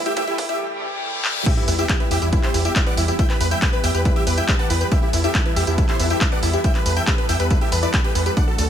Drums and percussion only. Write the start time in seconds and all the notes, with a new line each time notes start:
0.06 closed hi-hat
0.17 kick, closed hi-hat
0.28 closed hi-hat
0.38 kick, open hi-hat
0.49 closed hi-hat
1.25 clap
1.46 kick, closed hi-hat, crash, tambourine
1.68 open hi-hat, tambourine
1.79 closed hi-hat, tambourine
1.89 kick, clap, closed hi-hat, tambourine
2.00 closed hi-hat
2.11 open hi-hat, tambourine
2.22 closed hi-hat, tambourine
2.33 kick, closed hi-hat, tambourine
2.43 clap, closed hi-hat
2.54 open hi-hat, tambourine
2.65 closed hi-hat, tambourine
2.76 kick, clap, closed hi-hat, tambourine
2.87 closed hi-hat
2.97 open hi-hat, tambourine
3.08 closed hi-hat, tambourine
3.19 kick, closed hi-hat, tambourine
3.30 clap, closed hi-hat
3.41 open hi-hat, tambourine
3.51 closed hi-hat, tambourine
3.62 kick, clap, closed hi-hat, tambourine
3.73 closed hi-hat
3.84 open hi-hat, tambourine
3.95 closed hi-hat, tambourine
4.05 kick, closed hi-hat, tambourine
4.16 closed hi-hat
4.27 open hi-hat, tambourine
4.38 closed hi-hat, tambourine
4.48 kick, clap, closed hi-hat, tambourine
4.59 closed hi-hat
4.70 open hi-hat, tambourine
4.81 closed hi-hat, tambourine
4.92 kick, closed hi-hat, tambourine
5.13 open hi-hat, tambourine
5.24 closed hi-hat, tambourine
5.35 kick, clap, closed hi-hat, tambourine
5.46 closed hi-hat
5.56 open hi-hat, tambourine
5.67 closed hi-hat, tambourine
5.78 kick, closed hi-hat, tambourine
5.89 clap, closed hi-hat
6.00 open hi-hat, tambourine
6.10 closed hi-hat, tambourine
6.21 kick, clap, closed hi-hat, tambourine
6.32 closed hi-hat
6.43 open hi-hat, tambourine
6.53 closed hi-hat, tambourine
6.64 kick, closed hi-hat, tambourine
6.75 clap, closed hi-hat
6.86 open hi-hat, tambourine
6.97 closed hi-hat, tambourine
7.07 kick, clap, closed hi-hat, tambourine
7.18 closed hi-hat
7.29 open hi-hat, tambourine
7.40 closed hi-hat, tambourine
7.50 kick, closed hi-hat, tambourine
7.61 closed hi-hat
7.72 open hi-hat, tambourine
7.83 closed hi-hat, tambourine
7.94 kick, clap, closed hi-hat, tambourine
8.04 closed hi-hat
8.15 open hi-hat, tambourine
8.26 closed hi-hat, tambourine
8.37 kick, closed hi-hat, tambourine
8.58 open hi-hat, tambourine